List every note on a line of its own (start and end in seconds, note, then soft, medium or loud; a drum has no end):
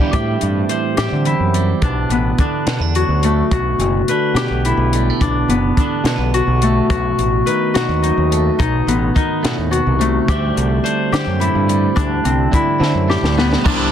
0.00 0.12 G2 medium
0.00 0.13 D3 medium
0.00 0.13 D3 loud
0.00 0.13 G3 loud
0.00 0.13 B3 loud
0.00 0.14 D4 loud
0.00 0.14 D4 soft
0.00 1.82 D4 medium
0.00 1.26 E4 medium
0.00 0.11 G4 medium
0.00 0.13 G4 medium
0.12 1.26 A2 medium
0.12 0.35 A2 medium
0.12 0.69 E3 soft
0.12 1.54 G3 medium
0.12 0.98 C4 medium
0.12 1.81 E4 medium
0.12 0.97 G4 medium
0.12 kick medium
0.12 closed hi-hat medium
0.41 0.64 G2 medium
0.41 closed hi-hat medium
0.69 1.80 E3 medium
0.69 2.17 C5 medium
0.69 closed hi-hat medium
0.97 1.09 A2 medium
0.97 1.80 C4 medium
0.97 3.01 G4 medium
0.97 snare medium
0.97 closed hi-hat medium
1.12 1.34 D3 medium
1.25 1.80 E2 medium
1.25 3.87 E4 medium
1.25 closed hi-hat soft
1.40 1.72 F#2 medium
1.54 1.83 G3 medium
1.54 closed hi-hat medium
1.82 2.04 B1 medium
1.82 2.40 B2 medium
1.82 2.39 D4 medium
1.82 kick medium
1.82 closed hi-hat medium
2.09 2.31 A1 medium
2.09 5.22 B3 medium
2.09 closed hi-hat medium
2.38 4.09 D3 medium
2.38 5.19 D4 medium
2.38 kick medium
2.38 closed hi-hat medium
2.67 2.78 B2 medium
2.67 2.81 B3 medium
2.67 snare loud
2.67 closed hi-hat medium
2.80 3.02 E2 medium
2.80 3.52 D4 soft
2.95 3.50 F#2 medium
2.95 3.52 F#4 medium
2.95 closed hi-hat medium
3.09 3.41 D2 medium
3.23 6.57 A3 medium
3.23 3.56 A3 medium
3.23 closed hi-hat medium
3.51 3.73 B1 medium
3.51 4.09 B2 medium
3.51 4.42 F#4 medium
3.51 kick loud
3.51 closed hi-hat medium
3.79 4.01 F#1 medium
3.79 closed hi-hat medium
4.08 5.79 D3 medium
4.08 6.14 B4 medium
4.08 closed hi-hat medium
4.35 4.46 B2 medium
4.35 6.09 B3 medium
4.35 6.40 G4 medium
4.35 snare loud
4.35 closed hi-hat medium
4.50 4.72 B1 medium
4.65 5.22 B2 medium
4.65 7.26 E4 medium
4.65 closed hi-hat medium
4.77 5.10 B1 medium
4.93 5.10 G3 medium
4.93 closed hi-hat medium
5.10 5.23 A3 medium
5.21 5.43 B1 medium
5.21 5.79 B2 medium
5.21 5.77 D4 medium
5.21 kick medium
5.21 closed hi-hat medium
5.48 5.70 F#1 medium
5.48 8.60 B3 medium
5.48 closed hi-hat medium
5.77 6.92 D3 medium
5.77 8.08 D4 medium
5.77 kick medium
5.77 closed hi-hat medium
6.04 6.16 B2 medium
6.04 snare medium
6.04 closed hi-hat medium
6.09 7.75 B3 medium
6.18 6.40 B1 medium
6.34 6.91 B2 medium
6.34 6.89 F#4 medium
6.34 closed hi-hat soft
6.47 6.80 B1 medium
6.62 9.95 A3 medium
6.62 6.94 A3 medium
6.62 closed hi-hat medium
6.90 7.12 B1 medium
6.90 7.47 B2 medium
6.90 7.74 F#4 medium
6.90 kick medium
6.90 closed hi-hat medium
7.19 7.40 A1 medium
7.19 closed hi-hat medium
7.46 8.57 D#3 medium
7.46 9.51 B4 medium
7.46 closed hi-hat medium
7.74 7.86 B2 medium
7.74 8.57 D#4 medium
7.74 9.71 F#4 medium
7.74 snare loud
7.74 closed hi-hat medium
7.88 8.10 D#2 medium
8.02 8.57 F#2 medium
8.02 8.58 D#4 medium
8.02 closed hi-hat medium
8.18 8.49 D#2 medium
8.32 8.63 A3 medium
8.32 closed hi-hat medium
8.59 8.81 B1 medium
8.59 9.16 B2 medium
8.59 9.15 D#4 medium
8.59 kick medium
8.59 closed hi-hat medium
8.87 9.09 A1 loud
8.87 10.90 B3 medium
8.87 closed hi-hat medium
9.15 10.25 D#3 medium
9.15 11.46 D#4 medium
9.15 kick medium
9.15 closed hi-hat medium
9.43 9.71 A2 medium
9.43 9.55 B2 loud
9.43 snare loud
9.43 closed hi-hat medium
9.58 9.79 D#2 medium
9.71 9.99 B2 medium
9.71 10.35 F#4 medium
9.71 closed hi-hat medium
9.87 10.18 C2 medium
9.99 10.28 C3 medium
9.99 13.33 A3 medium
9.99 closed hi-hat medium
10.28 10.50 D2 medium
10.28 11.94 D2 medium
10.28 10.84 D3 medium
10.28 11.69 G3 medium
10.28 11.13 C4 medium
10.28 11.98 E4 medium
10.28 11.12 G4 medium
10.28 kick loud
10.28 closed hi-hat medium
10.57 10.78 C2 loud
10.57 closed hi-hat medium
10.84 12.51 D3 medium
10.84 12.82 C5 medium
10.84 closed hi-hat medium
11.12 11.24 D3 loud
11.12 11.98 C4 medium
11.12 13.09 G4 medium
11.12 snare medium
11.12 closed hi-hat medium
11.27 11.48 F#2 medium
11.40 11.94 A2 medium
11.40 12.53 E4 medium
11.40 closed hi-hat medium
11.55 11.87 G2 medium
11.69 13.36 G3 medium
11.69 closed hi-hat medium
11.95 13.65 D2 medium
11.95 12.18 D2 medium
11.95 13.65 D4 medium
11.95 kick loud
11.95 closed hi-hat medium
12.25 12.46 C2 medium
12.25 13.44 C4 medium
12.25 closed hi-hat medium
12.52 13.92 D3 medium
12.52 13.92 E4 medium
12.52 kick medium
12.52 closed hi-hat medium
12.80 12.91 D3 medium
12.80 13.61 C4 medium
12.80 snare medium
12.95 13.16 F#2 medium
13.08 13.62 A2 medium
13.08 13.92 G4 medium
13.08 snare medium
13.23 13.55 D2 medium
13.23 snare medium
13.38 13.92 G3 medium
13.38 13.92 B3 medium
13.38 snare medium
13.53 snare medium
13.65 13.87 C2 loud
13.65 13.92 C3 loud
13.65 13.92 C3 medium
13.65 13.92 E3 loud
13.65 13.92 G3 loud
13.65 13.92 C4 loud
13.65 13.92 D4 loud
13.65 13.92 E4 loud
13.65 kick loud
13.65 crash loud